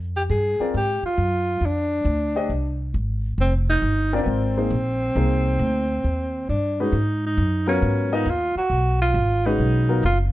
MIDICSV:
0, 0, Header, 1, 5, 480
1, 0, Start_track
1, 0, Tempo, 442152
1, 1767, Time_signature, 4, 2, 24, 8
1, 11203, End_track
2, 0, Start_track
2, 0, Title_t, "Grand piano"
2, 0, Program_c, 0, 0
2, 654, Note_on_c, 0, 60, 56
2, 657, Note_on_c, 0, 65, 55
2, 660, Note_on_c, 0, 70, 53
2, 660, Note_on_c, 0, 74, 65
2, 794, Note_off_c, 0, 60, 0
2, 796, Note_off_c, 0, 65, 0
2, 797, Note_off_c, 0, 70, 0
2, 797, Note_off_c, 0, 74, 0
2, 2560, Note_on_c, 0, 62, 60
2, 2561, Note_on_c, 0, 72, 53
2, 2562, Note_on_c, 0, 67, 56
2, 2567, Note_on_c, 0, 75, 65
2, 2706, Note_off_c, 0, 62, 0
2, 2707, Note_off_c, 0, 67, 0
2, 2707, Note_off_c, 0, 72, 0
2, 2710, Note_off_c, 0, 75, 0
2, 4483, Note_on_c, 0, 60, 66
2, 4484, Note_on_c, 0, 70, 61
2, 4485, Note_on_c, 0, 65, 63
2, 4491, Note_on_c, 0, 74, 72
2, 4933, Note_off_c, 0, 60, 0
2, 4934, Note_off_c, 0, 70, 0
2, 4935, Note_off_c, 0, 65, 0
2, 4938, Note_off_c, 0, 74, 0
2, 4965, Note_on_c, 0, 58, 50
2, 4967, Note_on_c, 0, 68, 47
2, 4968, Note_on_c, 0, 63, 49
2, 4968, Note_on_c, 0, 72, 59
2, 5109, Note_off_c, 0, 58, 0
2, 5110, Note_off_c, 0, 63, 0
2, 5110, Note_off_c, 0, 68, 0
2, 5110, Note_off_c, 0, 72, 0
2, 5601, Note_on_c, 0, 58, 51
2, 5601, Note_on_c, 0, 63, 49
2, 5601, Note_on_c, 0, 68, 49
2, 5610, Note_on_c, 0, 72, 61
2, 6341, Note_off_c, 0, 63, 0
2, 6341, Note_off_c, 0, 68, 0
2, 6342, Note_off_c, 0, 58, 0
2, 6346, Note_off_c, 0, 72, 0
2, 7382, Note_on_c, 0, 56, 52
2, 7382, Note_on_c, 0, 61, 52
2, 7382, Note_on_c, 0, 66, 54
2, 7383, Note_on_c, 0, 71, 62
2, 7517, Note_off_c, 0, 56, 0
2, 7517, Note_off_c, 0, 66, 0
2, 7518, Note_off_c, 0, 61, 0
2, 7518, Note_off_c, 0, 71, 0
2, 8327, Note_on_c, 0, 54, 68
2, 8329, Note_on_c, 0, 59, 64
2, 8331, Note_on_c, 0, 65, 62
2, 8333, Note_on_c, 0, 70, 79
2, 8775, Note_off_c, 0, 54, 0
2, 8776, Note_off_c, 0, 59, 0
2, 8778, Note_off_c, 0, 65, 0
2, 8779, Note_off_c, 0, 70, 0
2, 8816, Note_on_c, 0, 59, 70
2, 8819, Note_on_c, 0, 65, 62
2, 8821, Note_on_c, 0, 70, 60
2, 8824, Note_on_c, 0, 75, 74
2, 8955, Note_off_c, 0, 59, 0
2, 8956, Note_off_c, 0, 65, 0
2, 8957, Note_off_c, 0, 70, 0
2, 8958, Note_off_c, 0, 75, 0
2, 10267, Note_on_c, 0, 56, 66
2, 10269, Note_on_c, 0, 61, 62
2, 10270, Note_on_c, 0, 66, 65
2, 10270, Note_on_c, 0, 71, 75
2, 10705, Note_off_c, 0, 56, 0
2, 10706, Note_off_c, 0, 61, 0
2, 10707, Note_off_c, 0, 66, 0
2, 10707, Note_off_c, 0, 71, 0
2, 10732, Note_on_c, 0, 54, 62
2, 10737, Note_on_c, 0, 59, 57
2, 10737, Note_on_c, 0, 70, 63
2, 10738, Note_on_c, 0, 65, 53
2, 10872, Note_off_c, 0, 54, 0
2, 10875, Note_off_c, 0, 59, 0
2, 10875, Note_off_c, 0, 65, 0
2, 10875, Note_off_c, 0, 70, 0
2, 11203, End_track
3, 0, Start_track
3, 0, Title_t, "Tenor saxophone"
3, 0, Program_c, 1, 66
3, 176, Note_on_c, 1, 67, 78
3, 246, Note_off_c, 1, 67, 0
3, 329, Note_on_c, 1, 68, 90
3, 775, Note_off_c, 1, 68, 0
3, 832, Note_on_c, 1, 67, 83
3, 1120, Note_off_c, 1, 67, 0
3, 1148, Note_on_c, 1, 65, 80
3, 1795, Note_on_c, 1, 62, 80
3, 1811, Note_off_c, 1, 65, 0
3, 3220, Note_off_c, 1, 62, 0
3, 3696, Note_on_c, 1, 60, 82
3, 3839, Note_off_c, 1, 60, 0
3, 4016, Note_on_c, 1, 63, 90
3, 4459, Note_off_c, 1, 63, 0
3, 4509, Note_on_c, 1, 62, 79
3, 4577, Note_off_c, 1, 62, 0
3, 4584, Note_on_c, 1, 59, 55
3, 4662, Note_on_c, 1, 60, 86
3, 4679, Note_off_c, 1, 59, 0
3, 7044, Note_off_c, 1, 60, 0
3, 7051, Note_on_c, 1, 62, 70
3, 7391, Note_on_c, 1, 63, 70
3, 7407, Note_off_c, 1, 62, 0
3, 7860, Note_off_c, 1, 63, 0
3, 7885, Note_on_c, 1, 63, 76
3, 8314, Note_off_c, 1, 63, 0
3, 8344, Note_on_c, 1, 61, 80
3, 8837, Note_on_c, 1, 63, 74
3, 8853, Note_off_c, 1, 61, 0
3, 9011, Note_on_c, 1, 65, 84
3, 9027, Note_off_c, 1, 63, 0
3, 9304, Note_off_c, 1, 65, 0
3, 9311, Note_on_c, 1, 66, 81
3, 9747, Note_off_c, 1, 66, 0
3, 9791, Note_on_c, 1, 65, 83
3, 10270, Note_on_c, 1, 63, 85
3, 10286, Note_off_c, 1, 65, 0
3, 10897, Note_off_c, 1, 63, 0
3, 10915, Note_on_c, 1, 65, 87
3, 11053, Note_off_c, 1, 65, 0
3, 11203, End_track
4, 0, Start_track
4, 0, Title_t, "Upright bass"
4, 0, Program_c, 2, 32
4, 0, Note_on_c, 2, 41, 75
4, 312, Note_off_c, 2, 41, 0
4, 320, Note_on_c, 2, 43, 74
4, 623, Note_off_c, 2, 43, 0
4, 804, Note_on_c, 2, 44, 74
4, 1105, Note_off_c, 2, 44, 0
4, 1276, Note_on_c, 2, 42, 76
4, 1741, Note_off_c, 2, 42, 0
4, 1747, Note_on_c, 2, 41, 73
4, 2215, Note_off_c, 2, 41, 0
4, 2222, Note_on_c, 2, 38, 83
4, 2696, Note_off_c, 2, 38, 0
4, 2703, Note_on_c, 2, 36, 66
4, 3180, Note_off_c, 2, 36, 0
4, 3192, Note_on_c, 2, 32, 76
4, 3661, Note_off_c, 2, 32, 0
4, 3668, Note_on_c, 2, 29, 76
4, 4140, Note_off_c, 2, 29, 0
4, 4146, Note_on_c, 2, 31, 80
4, 4617, Note_off_c, 2, 31, 0
4, 4623, Note_on_c, 2, 32, 73
4, 5100, Note_off_c, 2, 32, 0
4, 5107, Note_on_c, 2, 34, 79
4, 5582, Note_off_c, 2, 34, 0
4, 5595, Note_on_c, 2, 36, 79
4, 6064, Note_off_c, 2, 36, 0
4, 6070, Note_on_c, 2, 38, 83
4, 6544, Note_off_c, 2, 38, 0
4, 6557, Note_on_c, 2, 39, 71
4, 7027, Note_off_c, 2, 39, 0
4, 7045, Note_on_c, 2, 43, 72
4, 7508, Note_off_c, 2, 43, 0
4, 7515, Note_on_c, 2, 44, 81
4, 7986, Note_off_c, 2, 44, 0
4, 8004, Note_on_c, 2, 42, 85
4, 8471, Note_off_c, 2, 42, 0
4, 8489, Note_on_c, 2, 44, 80
4, 8953, Note_off_c, 2, 44, 0
4, 8961, Note_on_c, 2, 39, 81
4, 9263, Note_off_c, 2, 39, 0
4, 9441, Note_on_c, 2, 35, 78
4, 9909, Note_off_c, 2, 35, 0
4, 9924, Note_on_c, 2, 32, 84
4, 10390, Note_off_c, 2, 32, 0
4, 10404, Note_on_c, 2, 35, 77
4, 10871, Note_off_c, 2, 35, 0
4, 10888, Note_on_c, 2, 30, 86
4, 11203, Note_off_c, 2, 30, 0
4, 11203, End_track
5, 0, Start_track
5, 0, Title_t, "Muted upright bass strokes"
5, 651, Note_on_c, 9, 29, 30
5, 760, Note_off_c, 9, 29, 0
5, 1116, Note_on_c, 9, 29, 36
5, 1225, Note_off_c, 9, 29, 0
5, 9285, Note_on_c, 9, 29, 36
5, 9393, Note_off_c, 9, 29, 0
5, 11203, End_track
0, 0, End_of_file